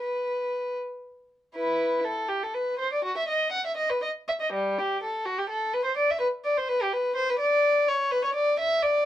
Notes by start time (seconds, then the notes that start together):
0.00 B4
1.56 E4 B4
2.04 A4
2.29 G4
2.43 A4
2.54 B4
2.79 C5
2.93 D5
3.04 F#4
3.17 E5
3.28 D#5
3.52 F#5
3.66 E5
3.77 D#5
3.90 B4
4.02 D#5
4.28 E5
4.41 D#5
4.52 G3
4.79 G4
5.03 A4
5.26 F#4
5.38 G4
5.50 A4
5.74 B4
5.85 C5
5.97 D5
6.10 E5
6.19 B4
6.44 D5
6.57 C5
6.68 B4
6.82 G4
6.93 B4
7.16 C5
7.30 B4
7.39 D5
7.89 C#5
8.11 B4
8.24 C#5
8.35 D5
8.59 E5
8.83 D5